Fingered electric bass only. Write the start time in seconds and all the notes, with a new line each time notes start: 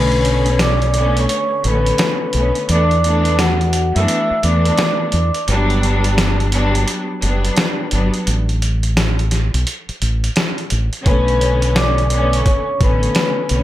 Already playing: B1
1.65 A1
2.35 B1
2.69 E2
3.96 F#2
4.31 muted fingered electric bass stroke
4.44 E2
5.14 E2
5.48 G1
7.23 F#1
7.93 G1
8.27 A1
9.54 B1
9.89 muted fingered electric bass stroke
10.02 A1
10.72 A1
11.06 B1
12.81 A1
13.51 B1